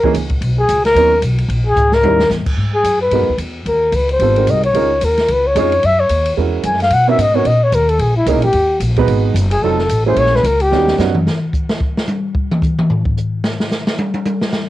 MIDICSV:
0, 0, Header, 1, 6, 480
1, 0, Start_track
1, 0, Key_signature, 5, "minor"
1, 0, Tempo, 271370
1, 734, Time_signature, 4, 2, 24, 8
1, 25985, End_track
2, 0, Start_track
2, 0, Title_t, "Flugelhorn"
2, 0, Program_c, 0, 56
2, 0, Note_on_c, 0, 70, 109
2, 264, Note_off_c, 0, 70, 0
2, 1044, Note_on_c, 0, 68, 97
2, 1476, Note_off_c, 0, 68, 0
2, 1509, Note_on_c, 0, 70, 125
2, 2131, Note_off_c, 0, 70, 0
2, 2946, Note_on_c, 0, 68, 104
2, 3429, Note_on_c, 0, 70, 118
2, 3456, Note_off_c, 0, 68, 0
2, 4095, Note_off_c, 0, 70, 0
2, 4860, Note_on_c, 0, 68, 96
2, 5299, Note_off_c, 0, 68, 0
2, 5328, Note_on_c, 0, 71, 93
2, 5956, Note_off_c, 0, 71, 0
2, 6502, Note_on_c, 0, 70, 91
2, 6993, Note_on_c, 0, 71, 86
2, 7019, Note_off_c, 0, 70, 0
2, 7259, Note_off_c, 0, 71, 0
2, 7280, Note_on_c, 0, 72, 93
2, 7964, Note_on_c, 0, 75, 98
2, 7990, Note_off_c, 0, 72, 0
2, 8208, Note_off_c, 0, 75, 0
2, 8218, Note_on_c, 0, 73, 95
2, 8921, Note_on_c, 0, 70, 90
2, 8948, Note_off_c, 0, 73, 0
2, 9408, Note_on_c, 0, 71, 90
2, 9434, Note_off_c, 0, 70, 0
2, 9673, Note_on_c, 0, 73, 95
2, 9699, Note_off_c, 0, 71, 0
2, 10354, Note_on_c, 0, 76, 112
2, 10381, Note_off_c, 0, 73, 0
2, 10610, Note_on_c, 0, 73, 95
2, 10636, Note_off_c, 0, 76, 0
2, 11281, Note_off_c, 0, 73, 0
2, 11780, Note_on_c, 0, 80, 84
2, 12031, Note_off_c, 0, 80, 0
2, 12066, Note_on_c, 0, 77, 102
2, 12264, Note_on_c, 0, 78, 110
2, 12291, Note_off_c, 0, 77, 0
2, 12532, Note_off_c, 0, 78, 0
2, 12553, Note_on_c, 0, 76, 98
2, 12755, Note_on_c, 0, 75, 90
2, 12781, Note_off_c, 0, 76, 0
2, 13004, Note_on_c, 0, 73, 93
2, 13030, Note_off_c, 0, 75, 0
2, 13214, Note_on_c, 0, 75, 101
2, 13241, Note_off_c, 0, 73, 0
2, 13505, Note_on_c, 0, 73, 99
2, 13531, Note_off_c, 0, 75, 0
2, 13700, Note_on_c, 0, 70, 92
2, 13727, Note_off_c, 0, 73, 0
2, 13961, Note_on_c, 0, 69, 96
2, 13987, Note_off_c, 0, 70, 0
2, 14176, Note_on_c, 0, 68, 81
2, 14202, Note_off_c, 0, 69, 0
2, 14436, Note_off_c, 0, 68, 0
2, 14447, Note_on_c, 0, 64, 88
2, 14650, Note_on_c, 0, 63, 78
2, 14677, Note_off_c, 0, 64, 0
2, 14905, Note_off_c, 0, 63, 0
2, 14915, Note_on_c, 0, 67, 98
2, 15546, Note_off_c, 0, 67, 0
2, 16833, Note_on_c, 0, 68, 87
2, 17033, Note_on_c, 0, 69, 84
2, 17059, Note_off_c, 0, 68, 0
2, 17795, Note_off_c, 0, 69, 0
2, 17808, Note_on_c, 0, 72, 97
2, 18024, Note_on_c, 0, 73, 113
2, 18050, Note_off_c, 0, 72, 0
2, 18320, Note_on_c, 0, 71, 90
2, 18347, Note_off_c, 0, 73, 0
2, 18503, Note_on_c, 0, 70, 93
2, 18530, Note_off_c, 0, 71, 0
2, 18778, Note_on_c, 0, 67, 106
2, 18804, Note_off_c, 0, 70, 0
2, 19445, Note_off_c, 0, 67, 0
2, 25985, End_track
3, 0, Start_track
3, 0, Title_t, "Grand piano"
3, 0, Program_c, 1, 0
3, 63, Note_on_c, 1, 52, 77
3, 74, Note_on_c, 1, 58, 76
3, 79, Note_on_c, 1, 61, 66
3, 90, Note_on_c, 1, 63, 73
3, 93, Note_on_c, 1, 68, 84
3, 238, Note_off_c, 1, 52, 0
3, 244, Note_off_c, 1, 58, 0
3, 246, Note_off_c, 1, 61, 0
3, 252, Note_off_c, 1, 63, 0
3, 253, Note_off_c, 1, 68, 0
3, 1701, Note_on_c, 1, 54, 59
3, 1712, Note_on_c, 1, 59, 62
3, 1719, Note_on_c, 1, 61, 62
3, 1723, Note_on_c, 1, 63, 63
3, 1728, Note_on_c, 1, 70, 74
3, 1950, Note_off_c, 1, 54, 0
3, 1956, Note_off_c, 1, 59, 0
3, 1959, Note_off_c, 1, 61, 0
3, 1961, Note_off_c, 1, 63, 0
3, 1963, Note_off_c, 1, 70, 0
3, 3629, Note_on_c, 1, 55, 71
3, 3631, Note_on_c, 1, 61, 59
3, 3632, Note_on_c, 1, 63, 62
3, 3640, Note_on_c, 1, 70, 74
3, 3649, Note_on_c, 1, 64, 61
3, 3871, Note_off_c, 1, 55, 0
3, 3872, Note_off_c, 1, 61, 0
3, 3873, Note_off_c, 1, 63, 0
3, 3877, Note_off_c, 1, 70, 0
3, 3881, Note_off_c, 1, 64, 0
3, 5531, Note_on_c, 1, 56, 55
3, 5534, Note_on_c, 1, 59, 52
3, 5538, Note_on_c, 1, 63, 53
3, 5540, Note_on_c, 1, 66, 59
3, 5558, Note_on_c, 1, 70, 65
3, 5781, Note_off_c, 1, 56, 0
3, 5782, Note_off_c, 1, 59, 0
3, 5784, Note_off_c, 1, 63, 0
3, 5786, Note_off_c, 1, 66, 0
3, 5794, Note_off_c, 1, 70, 0
3, 7452, Note_on_c, 1, 55, 59
3, 7454, Note_on_c, 1, 62, 52
3, 7457, Note_on_c, 1, 59, 57
3, 7463, Note_on_c, 1, 65, 55
3, 7474, Note_on_c, 1, 69, 59
3, 7700, Note_off_c, 1, 55, 0
3, 7701, Note_off_c, 1, 62, 0
3, 7702, Note_off_c, 1, 59, 0
3, 7706, Note_off_c, 1, 65, 0
3, 7711, Note_off_c, 1, 69, 0
3, 7731, Note_on_c, 1, 60, 51
3, 7735, Note_on_c, 1, 56, 56
3, 7741, Note_on_c, 1, 63, 47
3, 7746, Note_on_c, 1, 70, 67
3, 7747, Note_on_c, 1, 66, 51
3, 8150, Note_off_c, 1, 60, 0
3, 8152, Note_off_c, 1, 56, 0
3, 8155, Note_off_c, 1, 63, 0
3, 8157, Note_off_c, 1, 70, 0
3, 8158, Note_off_c, 1, 66, 0
3, 8399, Note_on_c, 1, 61, 60
3, 8402, Note_on_c, 1, 56, 67
3, 8406, Note_on_c, 1, 63, 61
3, 8418, Note_on_c, 1, 65, 66
3, 8421, Note_on_c, 1, 70, 72
3, 8653, Note_off_c, 1, 61, 0
3, 8655, Note_off_c, 1, 56, 0
3, 8657, Note_off_c, 1, 63, 0
3, 8662, Note_off_c, 1, 65, 0
3, 8664, Note_off_c, 1, 70, 0
3, 9843, Note_on_c, 1, 56, 76
3, 9846, Note_on_c, 1, 61, 71
3, 9853, Note_on_c, 1, 63, 71
3, 9864, Note_on_c, 1, 65, 73
3, 9868, Note_on_c, 1, 73, 89
3, 10094, Note_off_c, 1, 56, 0
3, 10096, Note_off_c, 1, 61, 0
3, 10099, Note_off_c, 1, 63, 0
3, 10105, Note_off_c, 1, 65, 0
3, 10107, Note_off_c, 1, 73, 0
3, 11270, Note_on_c, 1, 61, 53
3, 11272, Note_on_c, 1, 56, 65
3, 11281, Note_on_c, 1, 66, 54
3, 11282, Note_on_c, 1, 64, 56
3, 11291, Note_on_c, 1, 70, 65
3, 11979, Note_off_c, 1, 56, 0
3, 11979, Note_off_c, 1, 61, 0
3, 11984, Note_off_c, 1, 66, 0
3, 11985, Note_off_c, 1, 64, 0
3, 11989, Note_off_c, 1, 70, 0
3, 12512, Note_on_c, 1, 59, 75
3, 12519, Note_on_c, 1, 63, 63
3, 12520, Note_on_c, 1, 61, 64
3, 12532, Note_on_c, 1, 66, 68
3, 12535, Note_on_c, 1, 70, 77
3, 12692, Note_off_c, 1, 59, 0
3, 12696, Note_off_c, 1, 61, 0
3, 12696, Note_off_c, 1, 63, 0
3, 12702, Note_off_c, 1, 66, 0
3, 12704, Note_off_c, 1, 70, 0
3, 12983, Note_on_c, 1, 59, 64
3, 13000, Note_on_c, 1, 61, 60
3, 13005, Note_on_c, 1, 63, 63
3, 13012, Note_on_c, 1, 70, 70
3, 13015, Note_on_c, 1, 66, 60
3, 13168, Note_off_c, 1, 59, 0
3, 13176, Note_off_c, 1, 61, 0
3, 13179, Note_off_c, 1, 63, 0
3, 13182, Note_off_c, 1, 70, 0
3, 13184, Note_off_c, 1, 66, 0
3, 14628, Note_on_c, 1, 58, 69
3, 14633, Note_on_c, 1, 61, 65
3, 14642, Note_on_c, 1, 64, 69
3, 14652, Note_on_c, 1, 68, 69
3, 14658, Note_on_c, 1, 70, 82
3, 14885, Note_off_c, 1, 58, 0
3, 14888, Note_off_c, 1, 61, 0
3, 14892, Note_off_c, 1, 64, 0
3, 14897, Note_off_c, 1, 68, 0
3, 14900, Note_off_c, 1, 70, 0
3, 15881, Note_on_c, 1, 56, 86
3, 15881, Note_on_c, 1, 59, 80
3, 15890, Note_on_c, 1, 63, 78
3, 15897, Note_on_c, 1, 66, 73
3, 15905, Note_on_c, 1, 71, 93
3, 16516, Note_off_c, 1, 56, 0
3, 16516, Note_off_c, 1, 59, 0
3, 16521, Note_off_c, 1, 63, 0
3, 16524, Note_off_c, 1, 66, 0
3, 16528, Note_off_c, 1, 71, 0
3, 17043, Note_on_c, 1, 54, 63
3, 17047, Note_on_c, 1, 60, 58
3, 17055, Note_on_c, 1, 63, 59
3, 17064, Note_on_c, 1, 65, 58
3, 17067, Note_on_c, 1, 69, 75
3, 17292, Note_off_c, 1, 54, 0
3, 17294, Note_off_c, 1, 60, 0
3, 17298, Note_off_c, 1, 63, 0
3, 17302, Note_off_c, 1, 65, 0
3, 17304, Note_off_c, 1, 69, 0
3, 17798, Note_on_c, 1, 56, 63
3, 17802, Note_on_c, 1, 58, 61
3, 17809, Note_on_c, 1, 61, 66
3, 17816, Note_on_c, 1, 64, 64
3, 17830, Note_on_c, 1, 68, 73
3, 18435, Note_off_c, 1, 56, 0
3, 18437, Note_off_c, 1, 58, 0
3, 18440, Note_off_c, 1, 61, 0
3, 18444, Note_off_c, 1, 64, 0
3, 18451, Note_off_c, 1, 68, 0
3, 18957, Note_on_c, 1, 55, 64
3, 18966, Note_on_c, 1, 61, 56
3, 18967, Note_on_c, 1, 59, 61
3, 18980, Note_on_c, 1, 63, 58
3, 18981, Note_on_c, 1, 66, 69
3, 19404, Note_off_c, 1, 55, 0
3, 19416, Note_off_c, 1, 59, 0
3, 19420, Note_off_c, 1, 61, 0
3, 19428, Note_off_c, 1, 63, 0
3, 19428, Note_off_c, 1, 66, 0
3, 19431, Note_on_c, 1, 55, 71
3, 19442, Note_on_c, 1, 59, 66
3, 19449, Note_on_c, 1, 61, 65
3, 19457, Note_on_c, 1, 63, 59
3, 19461, Note_on_c, 1, 66, 79
3, 19687, Note_off_c, 1, 55, 0
3, 19693, Note_off_c, 1, 59, 0
3, 19696, Note_off_c, 1, 61, 0
3, 19700, Note_off_c, 1, 63, 0
3, 19702, Note_off_c, 1, 66, 0
3, 25985, End_track
4, 0, Start_track
4, 0, Title_t, "Upright bass"
4, 0, Program_c, 2, 32
4, 251, Note_on_c, 2, 37, 100
4, 717, Note_off_c, 2, 37, 0
4, 726, Note_on_c, 2, 35, 82
4, 1195, Note_off_c, 2, 35, 0
4, 1212, Note_on_c, 2, 37, 93
4, 1667, Note_off_c, 2, 37, 0
4, 1677, Note_on_c, 2, 39, 91
4, 2145, Note_off_c, 2, 39, 0
4, 2155, Note_on_c, 2, 35, 102
4, 2615, Note_off_c, 2, 35, 0
4, 2626, Note_on_c, 2, 34, 92
4, 3102, Note_off_c, 2, 34, 0
4, 3114, Note_on_c, 2, 37, 98
4, 3574, Note_off_c, 2, 37, 0
4, 3585, Note_on_c, 2, 39, 87
4, 4054, Note_off_c, 2, 39, 0
4, 4064, Note_on_c, 2, 40, 106
4, 4336, Note_off_c, 2, 40, 0
4, 4547, Note_on_c, 2, 44, 81
4, 5004, Note_off_c, 2, 44, 0
4, 5015, Note_on_c, 2, 42, 88
4, 5494, Note_off_c, 2, 42, 0
4, 5502, Note_on_c, 2, 44, 79
4, 5660, Note_off_c, 2, 44, 0
4, 5660, Note_on_c, 2, 42, 55
4, 5807, Note_off_c, 2, 42, 0
4, 5817, Note_on_c, 2, 39, 65
4, 5961, Note_off_c, 2, 39, 0
4, 5971, Note_on_c, 2, 40, 92
4, 6451, Note_off_c, 2, 40, 0
4, 6465, Note_on_c, 2, 39, 86
4, 6922, Note_off_c, 2, 39, 0
4, 6933, Note_on_c, 2, 37, 95
4, 7405, Note_off_c, 2, 37, 0
4, 7416, Note_on_c, 2, 32, 89
4, 7893, Note_off_c, 2, 32, 0
4, 7907, Note_on_c, 2, 36, 94
4, 8367, Note_off_c, 2, 36, 0
4, 8377, Note_on_c, 2, 37, 86
4, 8853, Note_off_c, 2, 37, 0
4, 8872, Note_on_c, 2, 39, 90
4, 9336, Note_off_c, 2, 39, 0
4, 9347, Note_on_c, 2, 37, 91
4, 9813, Note_off_c, 2, 37, 0
4, 9824, Note_on_c, 2, 41, 97
4, 10295, Note_off_c, 2, 41, 0
4, 10319, Note_on_c, 2, 42, 85
4, 10772, Note_off_c, 2, 42, 0
4, 10783, Note_on_c, 2, 39, 94
4, 11255, Note_off_c, 2, 39, 0
4, 11271, Note_on_c, 2, 40, 81
4, 11729, Note_off_c, 2, 40, 0
4, 11740, Note_on_c, 2, 42, 91
4, 12199, Note_off_c, 2, 42, 0
4, 12209, Note_on_c, 2, 47, 80
4, 12687, Note_off_c, 2, 47, 0
4, 12699, Note_on_c, 2, 44, 88
4, 13165, Note_off_c, 2, 44, 0
4, 13175, Note_on_c, 2, 46, 87
4, 13646, Note_off_c, 2, 46, 0
4, 13657, Note_on_c, 2, 39, 97
4, 14119, Note_off_c, 2, 39, 0
4, 14130, Note_on_c, 2, 34, 85
4, 14601, Note_off_c, 2, 34, 0
4, 14612, Note_on_c, 2, 37, 93
4, 14775, Note_off_c, 2, 37, 0
4, 14775, Note_on_c, 2, 34, 60
4, 14929, Note_off_c, 2, 34, 0
4, 14939, Note_on_c, 2, 32, 69
4, 15086, Note_off_c, 2, 32, 0
4, 15096, Note_on_c, 2, 39, 89
4, 15556, Note_off_c, 2, 39, 0
4, 15567, Note_on_c, 2, 34, 99
4, 16033, Note_off_c, 2, 34, 0
4, 16044, Note_on_c, 2, 32, 90
4, 16514, Note_off_c, 2, 32, 0
4, 16525, Note_on_c, 2, 30, 105
4, 17004, Note_off_c, 2, 30, 0
4, 17019, Note_on_c, 2, 29, 84
4, 17484, Note_off_c, 2, 29, 0
4, 17494, Note_on_c, 2, 33, 106
4, 17958, Note_off_c, 2, 33, 0
4, 17968, Note_on_c, 2, 34, 93
4, 18439, Note_off_c, 2, 34, 0
4, 18450, Note_on_c, 2, 37, 99
4, 18927, Note_off_c, 2, 37, 0
4, 18949, Note_on_c, 2, 39, 90
4, 19417, Note_off_c, 2, 39, 0
4, 19425, Note_on_c, 2, 42, 109
4, 19895, Note_off_c, 2, 42, 0
4, 25985, End_track
5, 0, Start_track
5, 0, Title_t, "Muted upright bass strokes"
5, 67, Note_on_c, 9, 29, 42
5, 244, Note_off_c, 9, 29, 0
5, 4358, Note_on_c, 9, 29, 44
5, 4535, Note_off_c, 9, 29, 0
5, 25985, End_track
6, 0, Start_track
6, 0, Title_t, "Drums"
6, 65, Note_on_c, 9, 36, 62
6, 242, Note_off_c, 9, 36, 0
6, 258, Note_on_c, 9, 44, 54
6, 258, Note_on_c, 9, 51, 77
6, 434, Note_off_c, 9, 44, 0
6, 434, Note_off_c, 9, 51, 0
6, 524, Note_on_c, 9, 51, 46
6, 538, Note_on_c, 9, 36, 64
6, 701, Note_off_c, 9, 51, 0
6, 715, Note_off_c, 9, 36, 0
6, 738, Note_on_c, 9, 51, 70
6, 915, Note_off_c, 9, 51, 0
6, 1214, Note_on_c, 9, 44, 67
6, 1214, Note_on_c, 9, 51, 76
6, 1391, Note_off_c, 9, 44, 0
6, 1391, Note_off_c, 9, 51, 0
6, 1500, Note_on_c, 9, 51, 49
6, 1508, Note_on_c, 9, 38, 60
6, 1677, Note_off_c, 9, 51, 0
6, 1684, Note_off_c, 9, 38, 0
6, 1703, Note_on_c, 9, 51, 68
6, 1880, Note_off_c, 9, 51, 0
6, 2159, Note_on_c, 9, 44, 55
6, 2159, Note_on_c, 9, 51, 76
6, 2336, Note_off_c, 9, 44, 0
6, 2336, Note_off_c, 9, 51, 0
6, 2450, Note_on_c, 9, 51, 51
6, 2627, Note_off_c, 9, 51, 0
6, 2647, Note_on_c, 9, 51, 65
6, 2824, Note_off_c, 9, 51, 0
6, 3115, Note_on_c, 9, 44, 66
6, 3122, Note_on_c, 9, 43, 55
6, 3292, Note_off_c, 9, 44, 0
6, 3299, Note_off_c, 9, 43, 0
6, 3395, Note_on_c, 9, 38, 61
6, 3572, Note_off_c, 9, 38, 0
6, 3597, Note_on_c, 9, 48, 87
6, 3774, Note_off_c, 9, 48, 0
6, 3882, Note_on_c, 9, 38, 76
6, 4059, Note_off_c, 9, 38, 0
6, 4073, Note_on_c, 9, 44, 53
6, 4080, Note_on_c, 9, 38, 58
6, 4250, Note_off_c, 9, 44, 0
6, 4257, Note_off_c, 9, 38, 0
6, 4356, Note_on_c, 9, 49, 81
6, 4359, Note_on_c, 9, 36, 83
6, 4533, Note_off_c, 9, 49, 0
6, 4536, Note_off_c, 9, 36, 0
6, 5029, Note_on_c, 9, 44, 67
6, 5029, Note_on_c, 9, 51, 73
6, 5206, Note_off_c, 9, 44, 0
6, 5206, Note_off_c, 9, 51, 0
6, 5502, Note_on_c, 9, 51, 60
6, 5679, Note_off_c, 9, 51, 0
6, 5980, Note_on_c, 9, 44, 54
6, 5980, Note_on_c, 9, 51, 70
6, 6156, Note_off_c, 9, 44, 0
6, 6156, Note_off_c, 9, 51, 0
6, 6470, Note_on_c, 9, 51, 61
6, 6646, Note_off_c, 9, 51, 0
6, 6934, Note_on_c, 9, 44, 66
6, 6934, Note_on_c, 9, 51, 76
6, 7111, Note_off_c, 9, 44, 0
6, 7111, Note_off_c, 9, 51, 0
6, 7231, Note_on_c, 9, 51, 48
6, 7407, Note_off_c, 9, 51, 0
6, 7417, Note_on_c, 9, 51, 65
6, 7594, Note_off_c, 9, 51, 0
6, 7709, Note_on_c, 9, 51, 48
6, 7886, Note_off_c, 9, 51, 0
6, 7903, Note_on_c, 9, 44, 62
6, 7903, Note_on_c, 9, 51, 65
6, 8080, Note_off_c, 9, 44, 0
6, 8080, Note_off_c, 9, 51, 0
6, 8193, Note_on_c, 9, 51, 49
6, 8370, Note_off_c, 9, 51, 0
6, 8389, Note_on_c, 9, 51, 66
6, 8566, Note_off_c, 9, 51, 0
6, 8859, Note_on_c, 9, 44, 57
6, 8859, Note_on_c, 9, 51, 81
6, 9036, Note_off_c, 9, 44, 0
6, 9036, Note_off_c, 9, 51, 0
6, 9150, Note_on_c, 9, 51, 49
6, 9157, Note_on_c, 9, 38, 54
6, 9327, Note_off_c, 9, 51, 0
6, 9334, Note_off_c, 9, 38, 0
6, 9341, Note_on_c, 9, 51, 69
6, 9518, Note_off_c, 9, 51, 0
6, 9825, Note_on_c, 9, 44, 55
6, 9825, Note_on_c, 9, 51, 73
6, 10002, Note_off_c, 9, 44, 0
6, 10002, Note_off_c, 9, 51, 0
6, 10115, Note_on_c, 9, 51, 48
6, 10292, Note_off_c, 9, 51, 0
6, 10305, Note_on_c, 9, 51, 66
6, 10482, Note_off_c, 9, 51, 0
6, 10773, Note_on_c, 9, 44, 60
6, 10773, Note_on_c, 9, 51, 77
6, 10950, Note_off_c, 9, 44, 0
6, 10950, Note_off_c, 9, 51, 0
6, 11061, Note_on_c, 9, 51, 69
6, 11238, Note_off_c, 9, 51, 0
6, 11733, Note_on_c, 9, 44, 53
6, 11733, Note_on_c, 9, 51, 76
6, 11906, Note_on_c, 9, 38, 29
6, 11910, Note_off_c, 9, 44, 0
6, 11910, Note_off_c, 9, 51, 0
6, 12024, Note_on_c, 9, 51, 48
6, 12067, Note_off_c, 9, 38, 0
6, 12067, Note_on_c, 9, 38, 52
6, 12201, Note_off_c, 9, 51, 0
6, 12210, Note_on_c, 9, 51, 73
6, 12244, Note_off_c, 9, 38, 0
6, 12387, Note_off_c, 9, 51, 0
6, 12709, Note_on_c, 9, 44, 53
6, 12709, Note_on_c, 9, 51, 80
6, 12886, Note_off_c, 9, 44, 0
6, 12886, Note_off_c, 9, 51, 0
6, 13176, Note_on_c, 9, 51, 63
6, 13353, Note_off_c, 9, 51, 0
6, 13658, Note_on_c, 9, 44, 55
6, 13658, Note_on_c, 9, 51, 71
6, 13835, Note_off_c, 9, 44, 0
6, 13835, Note_off_c, 9, 51, 0
6, 13954, Note_on_c, 9, 51, 50
6, 14131, Note_off_c, 9, 51, 0
6, 14139, Note_on_c, 9, 51, 64
6, 14315, Note_off_c, 9, 51, 0
6, 14618, Note_on_c, 9, 44, 62
6, 14618, Note_on_c, 9, 51, 74
6, 14795, Note_off_c, 9, 44, 0
6, 14795, Note_off_c, 9, 51, 0
6, 14894, Note_on_c, 9, 51, 52
6, 15071, Note_off_c, 9, 51, 0
6, 15084, Note_on_c, 9, 51, 66
6, 15261, Note_off_c, 9, 51, 0
6, 15574, Note_on_c, 9, 44, 60
6, 15574, Note_on_c, 9, 51, 76
6, 15751, Note_off_c, 9, 44, 0
6, 15751, Note_off_c, 9, 51, 0
6, 15859, Note_on_c, 9, 51, 52
6, 15863, Note_on_c, 9, 36, 49
6, 16036, Note_off_c, 9, 51, 0
6, 16040, Note_off_c, 9, 36, 0
6, 16058, Note_on_c, 9, 51, 63
6, 16235, Note_off_c, 9, 51, 0
6, 16549, Note_on_c, 9, 44, 68
6, 16549, Note_on_c, 9, 51, 80
6, 16726, Note_off_c, 9, 44, 0
6, 16726, Note_off_c, 9, 51, 0
6, 16823, Note_on_c, 9, 51, 76
6, 17000, Note_off_c, 9, 51, 0
6, 17311, Note_on_c, 9, 38, 41
6, 17488, Note_off_c, 9, 38, 0
6, 17502, Note_on_c, 9, 44, 69
6, 17502, Note_on_c, 9, 51, 70
6, 17679, Note_off_c, 9, 44, 0
6, 17679, Note_off_c, 9, 51, 0
6, 17980, Note_on_c, 9, 51, 67
6, 18149, Note_on_c, 9, 38, 33
6, 18156, Note_off_c, 9, 51, 0
6, 18315, Note_off_c, 9, 38, 0
6, 18315, Note_on_c, 9, 38, 48
6, 18472, Note_on_c, 9, 44, 57
6, 18472, Note_on_c, 9, 51, 78
6, 18491, Note_off_c, 9, 38, 0
6, 18648, Note_off_c, 9, 44, 0
6, 18648, Note_off_c, 9, 51, 0
6, 18746, Note_on_c, 9, 51, 56
6, 18923, Note_off_c, 9, 51, 0
6, 18958, Note_on_c, 9, 38, 53
6, 19135, Note_off_c, 9, 38, 0
6, 19239, Note_on_c, 9, 38, 65
6, 19416, Note_off_c, 9, 38, 0
6, 19431, Note_on_c, 9, 44, 59
6, 19438, Note_on_c, 9, 38, 85
6, 19608, Note_off_c, 9, 44, 0
6, 19615, Note_off_c, 9, 38, 0
6, 19716, Note_on_c, 9, 47, 89
6, 19892, Note_off_c, 9, 47, 0
6, 19930, Note_on_c, 9, 38, 92
6, 20107, Note_off_c, 9, 38, 0
6, 20398, Note_on_c, 9, 36, 77
6, 20400, Note_on_c, 9, 44, 54
6, 20575, Note_off_c, 9, 36, 0
6, 20577, Note_off_c, 9, 44, 0
6, 20685, Note_on_c, 9, 38, 97
6, 20861, Note_off_c, 9, 38, 0
6, 20883, Note_on_c, 9, 36, 70
6, 21060, Note_off_c, 9, 36, 0
6, 21181, Note_on_c, 9, 38, 96
6, 21354, Note_on_c, 9, 44, 55
6, 21358, Note_off_c, 9, 38, 0
6, 21361, Note_on_c, 9, 48, 86
6, 21531, Note_off_c, 9, 44, 0
6, 21538, Note_off_c, 9, 48, 0
6, 21840, Note_on_c, 9, 36, 75
6, 22017, Note_off_c, 9, 36, 0
6, 22136, Note_on_c, 9, 47, 102
6, 22313, Note_off_c, 9, 47, 0
6, 22325, Note_on_c, 9, 36, 75
6, 22331, Note_on_c, 9, 44, 58
6, 22501, Note_off_c, 9, 36, 0
6, 22508, Note_off_c, 9, 44, 0
6, 22616, Note_on_c, 9, 47, 99
6, 22793, Note_off_c, 9, 47, 0
6, 22815, Note_on_c, 9, 43, 93
6, 22992, Note_off_c, 9, 43, 0
6, 23089, Note_on_c, 9, 36, 78
6, 23266, Note_off_c, 9, 36, 0
6, 23295, Note_on_c, 9, 44, 58
6, 23472, Note_off_c, 9, 44, 0
6, 23772, Note_on_c, 9, 38, 105
6, 23949, Note_off_c, 9, 38, 0
6, 24059, Note_on_c, 9, 38, 100
6, 24236, Note_off_c, 9, 38, 0
6, 24252, Note_on_c, 9, 44, 63
6, 24259, Note_on_c, 9, 38, 103
6, 24429, Note_off_c, 9, 44, 0
6, 24436, Note_off_c, 9, 38, 0
6, 24535, Note_on_c, 9, 38, 104
6, 24712, Note_off_c, 9, 38, 0
6, 24739, Note_on_c, 9, 48, 97
6, 24916, Note_off_c, 9, 48, 0
6, 25010, Note_on_c, 9, 48, 92
6, 25187, Note_off_c, 9, 48, 0
6, 25208, Note_on_c, 9, 44, 56
6, 25215, Note_on_c, 9, 48, 91
6, 25385, Note_off_c, 9, 44, 0
6, 25392, Note_off_c, 9, 48, 0
6, 25496, Note_on_c, 9, 38, 98
6, 25672, Note_off_c, 9, 38, 0
6, 25694, Note_on_c, 9, 38, 94
6, 25871, Note_off_c, 9, 38, 0
6, 25985, End_track
0, 0, End_of_file